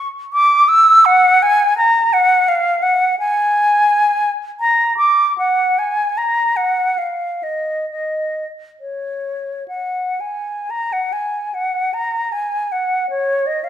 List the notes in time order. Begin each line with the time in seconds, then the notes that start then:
0.33 D6
0.68 E6
1.05 F#5
1.42 G#5
1.78 A#5
2.13 F#5
2.48 F5
2.82 F#5
3.19 G#5
4.60 A#5
4.97 D6
5.38 F#5
5.79 G#5
6.18 A#5
6.56 F#5
6.98 F5
7.43 D#5
7.90 D#5
8.81 C#5
9.68 F#5
10.20 G#5
10.70 A#5
10.93 F#5
11.13 G#5
11.54 F#5
11.94 A#5
12.32 G#5
12.72 F#5
13.10 C#5
13.47 D#5
13.64 F5